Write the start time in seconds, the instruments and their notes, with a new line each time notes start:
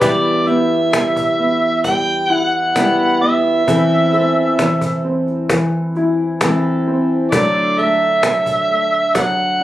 Already playing: upright piano D4 G4 B4
0.01 steel-string acoustic guitar E2 B3 E4 G4, upright piano G3 E4, harmonica G4 B4 D5, cajon bass
0.47 upright piano B3, steel-string acoustic guitar G4, harmonica E5, cajon slap
0.93 upright piano G3, cajon slap
1.16 cajon bass
1.39 upright piano B3
1.62 cajon slap
1.84 upright piano G3, harmonica G5, cajon bass, cajon slap
2.30 upright piano E4, harmonica F#5, cajon slap
2.53 harmonica F#5
2.76 upright piano G3, steel-string acoustic guitar B3 E4 G4, cajon slap
3.21 upright piano B3, harmonica E5
3.67 steel-string acoustic guitar E2 C4 E4 A4, upright piano E3 E4, cajon bass
3.91 cajon slap
4.13 upright piano C4, steel-string acoustic guitar A4, cajon slap
4.59 upright piano E3, cajon slap
4.81 cajon bass
5.05 upright piano C4
5.27 cajon slap
5.49 upright piano E3, cajon bass, cajon slap
5.95 upright piano E4, cajon slap
6.41 upright piano E3, steel-string acoustic guitar C4 E4 A4, cajon slap
6.87 upright piano C4
7.32 steel-string acoustic guitar D3 A3 D4 A4, upright piano F#3 D4, harmonica D5, cajon bass
7.55 cajon slap
7.78 upright piano A3, steel-string acoustic guitar A4, harmonica E5, cajon slap
8.23 upright piano F#3, cajon slap
8.46 cajon bass
8.70 upright piano A3
8.92 cajon slap
9.15 upright piano F#3, harmonica F#5, cajon bass, cajon slap